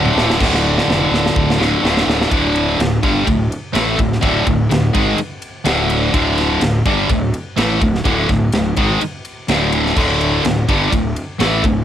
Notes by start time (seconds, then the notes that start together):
Already playing: D1 D2 A2 D3
0.06 mid tom
0.14 D1 D2 A2 D3, snare
0.30 snare
0.37 D1 D2 A2 D3, kick, crash
0.42 snare
0.54 snare
0.78 snare
0.88 F1, snare
1.11 D1, snare
1.26 snare
1.36 D1, kick
1.50 snare
1.58 D2 A2 D3, snare
1.82 D1 D2 A2 D3, snare
1.97 snare
2.07 D1, snare
2.21 snare
2.31 D1 D2 A2 D3, kick, ride
2.56 ride
2.79 D1 D2 A2, snare, ride
3.03 G1 G2 D3 G3, kick, ride
3.26 D1 D2 A2, kick, ride
3.52 ride
3.73 A1 A2 E3 A3, snare, ride
3.97 D1 D2 A2, kick, ride
4.12 snare
4.21 D1 D2 A2 D3, kick, ride
4.46 D1 D2 A2, kick, ride
4.69 D1 D2 A2, snare, ride
4.93 G#1 G#2 D#3 G#3, kick, ride
5.18 muted distorted electric guitar stroke, muted fingered electric bass stroke, ride
5.42 ride
5.65 D1 D2 A2 D3, snare, ride
5.90 ride
6.13 D1 D2 A2 D3, kick, ride
6.38 snare, ride
6.61 D1 D2 A2, snare, ride
6.86 G1 G2 D3 G3, kick, ride
7.10 D1 D2 A2, kick, ride
7.34 ride
7.57 A1 A2 E3 A3, snare, ride
7.81 D1 D2 A2, kick, ride
7.95 snare
8.04 D1 D2 A2 D3, kick, ride
8.29 D1 D2 A2, kick, snare, ride
8.52 D1 D2 A2, snare, ride
8.76 G#1 G#2 D#3 G#3, kick, ride
9.01 muted distorted electric guitar stroke, muted fingered electric bass stroke, ride
9.25 ride
9.48 D1 D2 A2 D3, snare, ride
9.72 ride
9.86 snare
9.96 D1 D2 A2 D3, kick, crash
10.21 ride
10.44 D1 D2 A2, snare, ride
10.69 G1 G2 D3 G3, kick, ride
10.92 D1 D2 A2, kick, ride
11.16 ride
11.39 A1 A2 E3 A3, snare, ride
11.64 D1 D2 A2, kick, ride